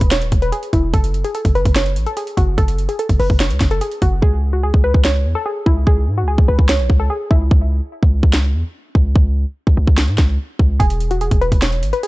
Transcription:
0.01 0.23 E1 loud
0.01 kick loud
0.01 closed hi-hat medium
0.11 0.40 C#5 medium
0.11 snare loud
0.11 closed hi-hat medium
0.22 0.31 D#1 medium
0.22 closed hi-hat medium
0.32 0.52 E1 loud
0.32 kick medium
0.32 closed hi-hat medium
0.42 0.51 B4 medium
0.42 closed hi-hat medium
0.52 0.70 G#4 medium
0.52 closed hi-hat medium
0.63 closed hi-hat medium
0.73 0.93 E1 loud
0.73 0.91 E4 medium
0.73 kick medium
0.73 closed hi-hat medium
0.94 1.23 F#1 loud
0.94 1.23 A4 loud
0.94 kick loud
0.94 closed hi-hat medium
1.04 closed hi-hat medium
1.14 closed hi-hat medium
1.24 1.33 G#4 medium
1.24 closed hi-hat medium
1.35 1.52 A4 medium
1.35 closed hi-hat medium
1.45 1.65 F#1 loud
1.45 kick medium
1.45 closed hi-hat medium
1.55 1.73 B4 loud
1.55 closed hi-hat soft
1.65 1.98 F#1 loud
1.65 kick medium
1.65 closed hi-hat medium
1.76 2.05 C#5 medium
1.76 snare loud
1.76 closed hi-hat medium
1.86 closed hi-hat medium
1.96 2.06 A1 loud
1.96 closed hi-hat medium
2.06 2.15 A4 medium
2.06 closed hi-hat medium
2.17 2.34 G#4 medium
2.17 closed hi-hat medium
2.27 closed hi-hat medium
2.37 2.57 F#1 loud
2.37 2.55 F#4 medium
2.37 kick medium
2.37 closed hi-hat medium
2.58 2.88 F#1 loud
2.58 2.87 A4 loud
2.58 kick loud
2.58 closed hi-hat medium
2.68 closed hi-hat medium
2.78 closed hi-hat medium
2.89 2.98 G#4 medium
2.89 closed hi-hat medium
2.99 3.17 A4 medium
2.99 closed hi-hat medium
3.09 3.19 F#1 loud
3.09 kick medium
3.09 closed hi-hat medium
3.19 3.29 F#1 loud
3.19 3.37 B4 loud
3.19 open hi-hat medium
3.30 3.52 F#1 loud
3.30 kick loud
3.40 3.69 C#5 medium
3.40 snare loud
3.40 closed hi-hat medium
3.50 3.60 C#2 loud
3.50 closed hi-hat medium
3.60 3.81 F#1 loud
3.60 kick loud
3.60 snare medium
3.60 closed hi-hat medium
3.71 3.80 A4 medium
3.71 closed hi-hat medium
3.81 3.99 G#4 medium
3.81 closed hi-hat medium
3.92 closed hi-hat medium
4.02 4.22 F#1 loud
4.02 4.20 F#4 medium
4.02 kick medium
4.02 closed hi-hat medium
4.22 4.72 C#2 loud
4.22 4.51 G#4 loud
4.22 kick loud
4.53 4.62 F#4 medium
4.63 4.81 G#4 medium
4.74 4.94 C#2 loud
4.74 kick medium
4.84 5.01 B4 medium
4.94 5.27 C#2 loud
4.94 kick medium
5.05 5.34 C#5 medium
5.05 snare loud
5.25 5.35 E2 loud
5.35 5.44 A4 loud
5.46 5.63 G#4 medium
5.66 5.86 C#2 loud
5.66 5.84 E4 medium
5.66 kick medium
5.87 6.09 C#2 loud
5.87 6.16 G#4 medium
5.87 kick loud
6.07 6.24 G#2 loud
6.18 6.26 F#4 medium
6.23 6.37 C#2 loud
6.28 6.45 G#4 medium
6.38 6.48 C#2 loud
6.38 kick medium
6.48 6.58 C#2 loud
6.48 6.66 B4 medium
6.59 6.81 C#2 loud
6.59 kick medium
6.69 6.98 C#5 medium
6.69 snare loud
6.79 6.89 B1 medium
6.90 7.09 C#2 loud
6.90 kick medium
7.00 7.08 A4 medium
7.10 7.28 G#4 medium
7.31 7.50 C#2 loud
7.31 7.48 E4 medium
7.31 kick medium
7.51 7.81 C#2 loud
7.51 kick loud
8.03 8.22 C#2 loud
8.03 kick medium
8.23 8.55 C#2 loud
8.23 kick medium
8.33 snare loud
8.54 8.64 E2 loud
8.95 9.15 C#2 loud
8.95 kick medium
9.16 9.45 C#2 loud
9.16 kick loud
9.67 9.77 C#2 loud
9.67 kick medium
9.77 9.87 C#2 loud
9.87 10.10 C#2 loud
9.87 kick medium
9.98 snare loud
10.08 10.18 G#2 loud
10.18 10.38 C#2 loud
10.18 kick medium
10.18 snare medium
10.59 10.79 C#2 loud
10.59 kick medium
10.80 11.29 E1 loud
10.80 11.09 G#4 loud
10.80 kick loud
10.80 closed hi-hat medium
10.90 closed hi-hat medium
11.00 closed hi-hat medium
11.11 11.20 F#4 medium
11.11 closed hi-hat medium
11.21 11.39 G#4 medium
11.21 closed hi-hat medium
11.31 11.51 E1 loud
11.31 kick medium
11.31 closed hi-hat medium
11.41 11.59 B4 medium
11.41 closed hi-hat soft
11.52 11.84 E1 loud
11.52 kick medium
11.52 closed hi-hat medium
11.62 11.91 C#5 medium
11.62 snare loud
11.62 closed hi-hat medium
11.72 closed hi-hat medium
11.83 11.92 G#1 loud
11.83 closed hi-hat medium
11.93 12.02 B4 medium
11.93 closed hi-hat medium
12.03 12.07 G#4 medium
12.03 closed hi-hat medium

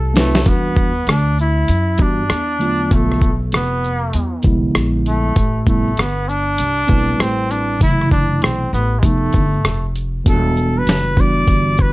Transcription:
0.00 0.43 C2 loud
0.00 0.16 A4 medium
0.14 0.38 A3 medium
0.14 0.38 C4 medium
0.14 0.39 D#4 medium
0.14 0.39 F4 medium
0.14 0.40 B4 medium
0.14 snare medium
0.14 closed hi-hat medium
0.14 shaker medium
0.18 0.50 A3 medium
0.35 snare medium
0.44 1.04 E2 medium
0.44 0.91 E3 medium
0.44 0.91 G3 medium
0.44 0.92 B3 medium
0.44 0.92 D4 medium
0.44 0.92 F#4 medium
0.44 kick loud
0.44 closed hi-hat medium
0.49 1.11 B3 medium
0.76 kick medium
0.76 shaker soft
1.07 1.65 D2 medium
1.07 1.39 D4 loud
1.07 cross-stick loud
1.07 closed hi-hat medium
1.39 2.03 E4 medium
1.39 shaker medium
1.68 1.98 F#2 medium
1.68 closed hi-hat medium
1.98 2.28 G2 medium
1.98 2.22 E3 medium
1.98 2.22 G3 medium
1.98 2.23 B3 medium
1.98 2.23 D4 medium
1.98 2.23 F#4 medium
1.98 kick medium
1.98 closed hi-hat soft
1.98 shaker soft
2.02 2.95 D4 medium
2.30 2.88 E2 medium
2.30 cross-stick medium
2.30 closed hi-hat medium
2.59 2.88 D3 medium
2.59 3.05 F#3 medium
2.59 2.90 A3 medium
2.59 2.91 B3 medium
2.59 2.92 F4 medium
2.59 closed hi-hat soft
2.59 shaker medium
2.89 3.49 B1 medium
2.89 3.28 D3 medium
2.89 3.28 F3 medium
2.89 3.29 A3 soft
2.89 3.29 B3 medium
2.89 3.30 F4 medium
2.89 kick loud
2.89 closed hi-hat medium
2.94 3.38 A3 medium
3.12 cross-stick soft
3.21 kick medium
3.21 shaker medium
3.52 4.11 F1 medium
3.52 4.42 B3 medium
3.52 cross-stick loud
3.52 closed hi-hat medium
3.84 shaker medium
4.13 4.43 E2 medium
4.13 closed hi-hat medium
4.43 4.73 C2 medium
4.43 5.30 D3 medium
4.43 5.31 F3 medium
4.43 5.31 G#3 medium
4.43 5.32 B3 medium
4.43 5.32 E4 medium
4.43 kick medium
4.43 closed hi-hat medium
4.43 shaker medium
4.75 5.33 A#1 medium
4.75 cross-stick medium
4.75 closed hi-hat medium
5.06 5.64 A3 medium
5.06 closed hi-hat medium
5.06 shaker soft
5.36 5.94 A1 medium
5.36 kick loud
5.36 closed hi-hat medium
5.65 5.89 C3 medium
5.65 5.90 G3 medium
5.65 5.90 A3 medium
5.65 5.90 B3 medium
5.65 5.91 E4 medium
5.65 kick medium
5.65 shaker medium
5.69 6.01 A3 medium
5.97 6.56 G1 medium
5.97 6.30 B3 medium
5.97 cross-stick medium
5.97 closed hi-hat medium
6.29 7.23 D4 loud
6.29 shaker medium
6.58 6.88 C2 medium
6.58 closed hi-hat medium
6.87 7.18 B1 medium
6.87 7.76 G3 medium
6.87 7.76 A3 medium
6.87 7.75 C4 medium
6.87 7.77 E4 medium
6.87 7.76 B4 medium
6.87 kick medium
6.87 closed hi-hat medium
6.87 shaker medium
7.19 7.78 A1 medium
7.19 7.52 C4 medium
7.19 cross-stick medium
7.19 closed hi-hat medium
7.51 7.81 D4 medium
7.51 closed hi-hat medium
7.51 shaker medium
7.79 8.39 F#1 medium
7.79 8.67 C3 medium
7.79 8.67 E3 medium
7.79 8.68 F#3 medium
7.79 8.68 A3 medium
7.79 8.69 E4 medium
7.79 8.10 E4 loud
7.79 kick medium
7.79 closed hi-hat medium
8.01 cross-stick soft
8.11 8.44 D4 medium
8.11 kick medium
8.11 shaker medium
8.42 8.71 B1 medium
8.42 8.73 C4 medium
8.42 cross-stick loud
8.42 closed hi-hat medium
8.73 9.02 A1 medium
8.73 9.01 B3 medium
8.73 shaker medium
8.99 9.32 F1 medium
8.99 9.40 C3 medium
8.99 9.41 F3 medium
8.99 9.07 G#3 medium
8.99 kick medium
9.03 9.42 A3 medium
9.03 9.96 A3 medium
9.03 9.42 B3 medium
9.03 9.42 D#4 medium
9.03 closed hi-hat medium
9.33 9.63 G1 medium
9.33 kick medium
9.33 closed hi-hat medium
9.33 shaker medium
9.64 10.23 F1 medium
9.64 cross-stick medium
9.64 closed hi-hat medium
9.96 closed hi-hat medium
9.96 shaker soft
10.24 10.84 E1 medium
10.24 11.12 E3 medium
10.24 11.12 G3 medium
10.24 11.13 B3 medium
10.24 11.13 D4 medium
10.24 11.14 F#4 medium
10.24 kick loud
10.24 closed hi-hat medium
10.29 10.80 A4 medium
10.56 shaker medium
10.78 11.22 B4 medium
10.87 11.45 F#1 medium
10.87 snare loud
10.87 closed hi-hat medium
11.16 11.93 E3 medium
11.16 11.93 G3 medium
11.16 11.93 B3 medium
11.16 11.93 D4 medium
11.16 11.93 F#4 medium
11.16 kick medium
11.16 shaker medium
11.21 11.83 D5 loud
11.48 11.93 G1 medium
11.48 kick medium
11.48 closed hi-hat medium
11.77 11.93 B4 medium
11.77 kick loud
11.77 shaker medium

